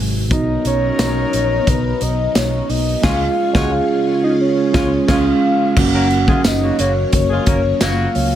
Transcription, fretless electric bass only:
Already playing: G#1
0.31 B1
0.65 B1
0.99 B1
1.33 A#1
1.67 B1
2.01 B1
2.35 B1
2.69 B1
3.03 C#2
3.55 C#2
4.74 C#2
5.09 C#2
5.77 F#1
6.45 F#1
6.79 F#1
7.13 F#1
7.47 F#1
7.81 F#1
8.15 C#2

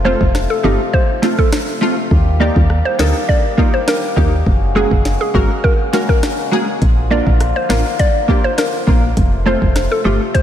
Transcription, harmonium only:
Already playing: C3 F3 A3 F4
2.11 D#3 G3 A#3 G4
4.46 C#3 G#3 F#4
6.82 D3 F3 A#3 F4
9.17 C3 A3

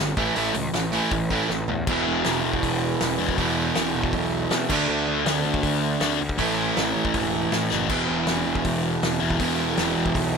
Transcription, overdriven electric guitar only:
Already playing: G2
0.00 D3
0.17 A2 E3 A3
0.36 A2 E3 A3
0.54 A2 E3
0.74 A2 E3
0.92 A2 E3 A3
1.12 A2 E3
1.31 A2 E3 A3
1.49 A2 E3
1.69 A2 E3
1.88 E2 B2 E3
3.38 E2 B2 E3
4.70 D3 A3 D4
6.38 A2 E3 A3
7.90 E2 B2 E3
9.40 E2 B2 E3

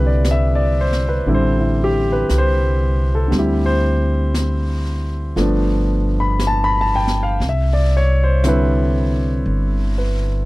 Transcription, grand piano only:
Already playing: D3 G3 C4 E4 G4 B4 E5
0.07 D5
0.31 E5
0.55 D5
0.81 C5
1.09 B4
1.27 D3 G3 C4 E4
1.34 C5
1.60 E4
1.84 G4
2.12 B4
2.38 C5
3.15 A4
3.28 D3 G3
3.35 C4 E4 G4
3.66 C5
5.36 F3 A3 B3 D4
6.20 B5
6.47 A5
6.64 B5
6.81 A5
6.96 G5
7.23 F5
7.49 E5
7.73 D5
7.97 C#5
8.23 C5
8.44 D3 G3 C4 E4
8.48 B4
9.98 B4

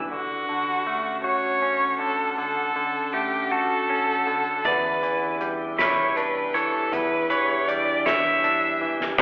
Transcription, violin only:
0.11 F#4
1.25 C#5
2.00 A4
2.38 A4
3.13 G4
3.51 A4
4.66 B4
5.79 C#5
6.16 B4
6.55 A4
6.94 B4
7.30 C#5
7.68 D5
8.06 E5

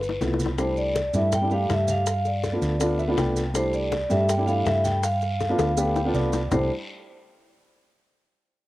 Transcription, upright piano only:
0.21 F3 A3 B3 E4
0.58 G3 A3 D4 E4
1.14 G3 A3 D4 E4
1.41 G3 A3 D4 E4
1.50 G3 A3 D4 G4
2.52 A3 B3 D4 F4
2.80 A3 B3 D4 F4
2.99 E5
3.08 A3 B3 D4 F4 F5
3.17 G5
3.54 G3 A3 D4 E4
4.09 G3 A3 D4 G4
4.37 G3 A3 D4 E4
4.46 G3 A3 D4 E4
5.49 A3 B3 D4 F4
5.77 A3 B3 D4 G4
5.96 G5
6.05 A3 B3 D4 F4
6.15 D5
6.52 G3 A3 D4 E4

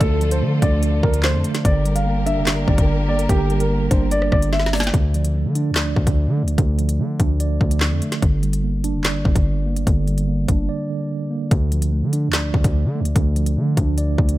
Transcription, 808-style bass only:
0.01 D2
0.42 D3
0.62 D2
1.03 D2
1.34 F2
1.65 G1
2.37 F1
2.52 G1
2.68 G1
2.78 G1
3.29 G1
3.91 G1
4.32 G1
4.94 D2
5.45 D3
5.71 D2
5.96 D2
6.07 D2
6.27 D3
6.43 D2
6.58 D2
6.99 D3
7.20 D2
7.61 D2
7.92 F2
8.22 G1
8.94 F1
9.10 G1
9.25 G1
9.36 G1
9.87 G1
10.48 G1
11.51 D2
12.03 D3
12.28 D2
12.54 D2
12.64 D2
12.85 D3
13.00 D2
13.16 D2
13.57 D3
13.77 D2
14.18 D2

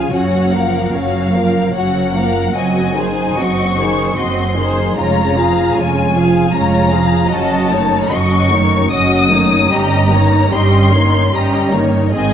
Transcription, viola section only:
Already playing: F3 F4
0.13 F#3 C#4
0.53 F3 A#3
0.93 F#3 C#4
1.33 F3 A#3
1.73 F#3 C#4
2.13 F3 A#3
2.54 F#3 C4
2.95 D#3 D#4
3.38 F#3 C4
3.79 D#3 D#4
4.17 F#3 C4
4.57 D#3 D#4
4.97 G#3 C#4
5.37 F3 F4
5.76 G#3 C#4
6.16 F3 F4
6.54 G#3 C#4
6.93 F3 F4
7.33 F#3 C#4
7.71 D#3 A3
8.12 F#3 C#4
8.51 D#3 A3
8.90 F#3 C#4
9.30 D#3 A3
9.71 G3 C#4
10.11 D#3 A#3
10.52 G3 C#4
10.92 D#3 A#3
11.32 G3 C#4
11.73 D#3 A#3
12.14 D#3 C4

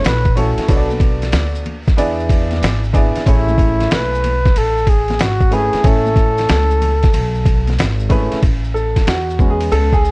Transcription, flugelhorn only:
0.06 B4
0.37 A4
3.28 E4
3.92 B4
4.57 A4
4.89 G#4
5.22 F#4
5.54 G#4
5.87 A4

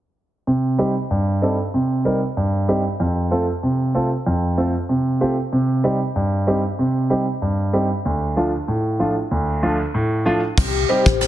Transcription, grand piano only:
0.47 C3
0.78 G3 C4 D#4 G4
1.11 G2
1.42 G3 C4 D#4 A4
1.74 C3
2.05 G3 C4 D#4 A#4
2.37 G2
2.68 G3 C4 D#4 G4
3.00 F2
3.31 A3 C4 F4 A4
3.63 C3
3.94 A3 C4 F4 A4
4.26 F2
4.57 A3 C4 F4 A4
4.89 C3
5.21 A3 C4 F4 G4
5.53 C3
5.84 G3 C4 D#4 G4
6.16 G2
6.47 G3 C4 D#4 G4
6.79 C3
7.10 G3 C4 D#4 G4
7.42 G2
7.73 G3 C4 D#4 G4
8.05 D2
8.37 F3 A3 D4 F4
8.68 A2
8.99 F3 A3 D4 F4
9.31 D2
9.63 F3 A3 D4 F4
9.94 A2
10.25 F3 A3 D4 F4
10.89 G3 C4 D#4 G4

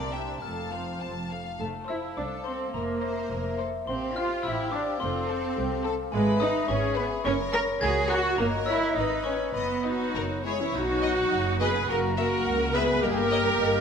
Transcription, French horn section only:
0.14 G3
0.44 F3
1.60 C5 F5
2.74 E5
3.89 C5 F5
5.00 A4
6.14 B4 E5
7.26 A#4 C#5
8.39 C#5 D#5
8.98 B4
9.87 F#3
10.16 A#4 C#5
10.45 G#3
10.61 E3
10.76 F#3
11.59 B3
11.89 A#3
12.18 A#3
12.74 B3
13.02 A#3

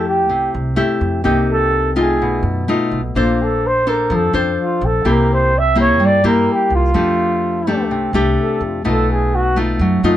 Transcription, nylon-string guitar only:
Already playing: F3 A3 E4 G4
0.29 C3
0.76 A3 E4 G4
1.24 C3 A#3 D#4 G4
1.96 A3 D#4 F4
2.22 B2
2.68 A3 D#4 F4
3.16 A#3 D4 A4 C5
3.87 D4 A4 C5
4.11 F3
4.33 D4 A4 C5
5.05 C3 A#3 E4 G4
5.75 A#3 E4 G4
6.00 G3
6.24 A#3 E4 G4
6.94 F3 A3 D4 G4
7.67 A3 D4 G4
7.91 C3
8.14 A3 D4 G4
8.85 B2 A3 D#4 F4
9.56 A3 D#4 F4
9.81 F#3
10.04 A3 D#4 F4

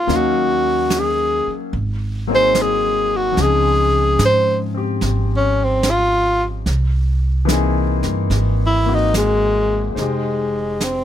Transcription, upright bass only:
0.08 D#2
1.47 muted upright bass stroke
1.73 G#1
3.37 C#2
4.19 G#2
5.02 G#1
6.66 C2
8.04 G2
8.30 G#1
9.96 F1

